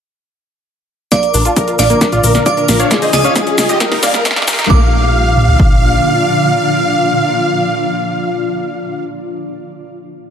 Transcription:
1.12 ambient pad A#2 D3 F3 D4 F4, synth pluck A#3, supersaw synth D5 F5, synth bell D5 D6, grand piano F5, kick, snare, closed hi-hat, riser, shaker
1.23 supersaw synth A#4, grand piano A#4, closed hi-hat, shaker
1.34 analog synth bass A#1, synth pluck D4, grand piano A#4, supersaw synth A#4, open hi-hat, shaker
1.45 synth pluck F4, supersaw synth F5 A5, grand piano A5, closed hi-hat, shaker
1.56 grand piano A#4, synth pluck A#4, supersaw synth A#4, kick, closed hi-hat, shaker
1.68 synth pluck F4, grand piano A#4, supersaw synth A#4, closed hi-hat, shaker
1.79 analog synth bass A#1, synth pluck D4, supersaw synth D5 F5, synth bell D5 D6, grand piano F5, snare, open hi-hat, shaker
1.90 synth pluck A#3, supersaw synth A#4, grand piano A#4, closed hi-hat, shaker
2.01 synth pluck D4, supersaw synth A#4, kick, snare, closed hi-hat, shaker
2.12 analog synth bass A#1, synth pluck F4, supersaw synth D5 F5, grand piano F5, closed hi-hat, shaker
2.24 analog synth bass A#1, grand piano A#4, supersaw synth A#4, synth pluck A#4, open hi-hat, shaker
2.35 grand piano A#4, supersaw synth A#4, snare, closed hi-hat, shaker
2.46 synth pluck F4, supersaw synth D5 F5, synth bell D5 D6, grand piano F5, kick, closed hi-hat, shaker
2.57 synth pluck D4, grand piano A#4, supersaw synth A#4, closed hi-hat, shaker
2.68 analog synth bass A#1, synth pluck A#3, supersaw synth A#4, grand piano A#4, snare, open hi-hat, shaker
2.80 synth pluck D4, supersaw synth C#5 F5, grand piano F5, closed hi-hat, shaker
2.91 ambient pad G#2 C#3 C#4, synth pluck F4, supersaw synth G#4, grand piano G#4, kick, snare, closed hi-hat, shaker
3.02 synth pluck G#4, supersaw synth C5 D#5, grand piano D#5, open hi-hat, shaker
3.13 analog synth bass C#2, synth pluck F4, grand piano G#4, supersaw synth G#4, synth bell D#5 D#6, snare, open hi-hat, shaker
3.24 synth pluck C#4, supersaw synth C#5 F5, grand piano F5, closed hi-hat, shaker
3.36 synth pluck G#3, grand piano G#4, supersaw synth G#4, kick, snare, closed hi-hat, shaker
3.47 synth pluck C#4, grand piano G#4, supersaw synth G#4, closed hi-hat, shaker
3.58 analog synth bass C#2, grand piano G#4, supersaw synth G#4, snare, open hi-hat, shaker
3.69 synth pluck F4, supersaw synth G4 D#5, grand piano D#5, closed hi-hat, shaker
3.80 ambient pad A#2 D#3 G3 D#4 G4, synth pluck G4, grand piano A#4, supersaw synth A#4, kick, snare, closed hi-hat, shaker
3.92 analog synth bass D#2, synth pluck D#4, supersaw synth A#4, snare, open hi-hat, shaker
4.03 analog synth bass D#2, synth pluck A#3, supersaw synth D5 F5, grand piano F5, snare, open hi-hat, shaker
4.14 synth pluck G3, grand piano A#4, supersaw synth A#4, snare, closed hi-hat, shaker
4.25 synth pluck A#3, grand piano A#4, supersaw synth A#4, kick, snare, closed hi-hat, shaker
4.31 snare
4.36 synth pluck D#4, supersaw synth D5 F5, grand piano F5, snare, closed hi-hat, shaker
4.42 snare
4.48 analog synth bass D#2, synth pluck G4, grand piano A#4, supersaw synth A#4, snare, open hi-hat, shaker
4.53 snare
4.59 synth pluck D#4, grand piano A#4, supersaw synth A#4, snare, closed hi-hat, shaker
4.64 snare
4.70 analog synth bass A#1, ambient pad A#2 D3 F3 D4 F4, synth pluck A#3, grand piano F5, supersaw synth F5, synth bell D6, kick
5.37 mid tom
5.48 floor tom
5.59 kick

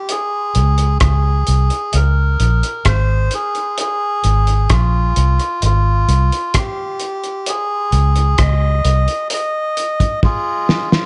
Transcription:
Already playing: melodica G4
0.09 melodica G#4, closed hi-hat
0.55 fingered electric bass C#2, closed hi-hat
0.78 closed hi-hat
1.00 fingered electric bass C#2, melodica G#4, kick, cross-stick, closed hi-hat
1.47 fingered electric bass C2, closed hi-hat
1.70 closed hi-hat
1.93 fingered electric bass C#2, melodica A#4, closed hi-hat
2.40 fingered electric bass A#1, closed hi-hat
2.63 closed hi-hat
2.85 fingered electric bass G#1, melodica C5, kick, cross-stick, closed hi-hat
3.31 melodica G#4, closed hi-hat
3.55 closed hi-hat
3.78 melodica G#4, closed hi-hat
4.24 fingered electric bass G#1, closed hi-hat
4.47 closed hi-hat
4.70 fingered electric bass A#1, melodica F4, kick, cross-stick, closed hi-hat
5.16 fingered electric bass C2, closed hi-hat
5.40 closed hi-hat
5.62 fingered electric bass G#1, melodica F4, closed hi-hat
6.08 fingered electric bass C2, closed hi-hat
6.32 closed hi-hat
6.54 melodica G4, kick, cross-stick, closed hi-hat
7.00 closed hi-hat
7.24 closed hi-hat
7.46 melodica G#4, closed hi-hat
7.92 fingered electric bass C#2, closed hi-hat
8.16 closed hi-hat
8.38 fingered electric bass C#2, melodica D#5, kick, cross-stick, closed hi-hat
8.85 fingered electric bass C2, closed hi-hat
9.08 closed hi-hat
9.30 melodica D#5, closed hi-hat
9.77 closed hi-hat
10.00 kick, closed hi-hat
10.23 melodica F4 G#4, kick
10.69 snare
10.92 snare

